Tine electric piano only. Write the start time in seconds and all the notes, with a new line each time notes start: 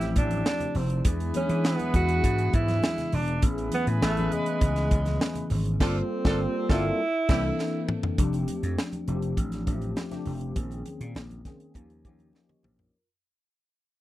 Already playing: F3 A3 C4 E4 G4
1.05 E3 G#3 B3 D4 G#4
1.34 E3 G#3 B3 D4 G#4
1.94 E3 G#3 B3 D4 G#4
3.42 E3 A3 B3 C#4 G#4
3.87 E3 A3 B3 C#4 G#4
4.17 E3 G#3 B3 C#4 G#4
5.80 G3 A#3 C4 F4 A4
6.24 G3 A#3 C4 F4 A4
6.69 G3 A#3 C4 F4 A4
7.29 E3 A#3 C4 D4 A4
8.18 F3 G3 C4 D4 G4
8.25 A3
9.07 F3 A3 C4 D4 G4
9.66 F3 A3 C4 D4 G4
10.11 F3 A3 C4 D4 G4
10.55 D#3 A#3 C4 C#4 G#4
11.45 D#3 A#3 C4 C#4 G#4
11.75 F3 A#3 C#4 D#4 G4
12.04 F3 A#3 C#4 D#4 G4
12.35 A#4 D#5
12.50 G4 C#5
12.65 G4 C5
12.79 F4 A#4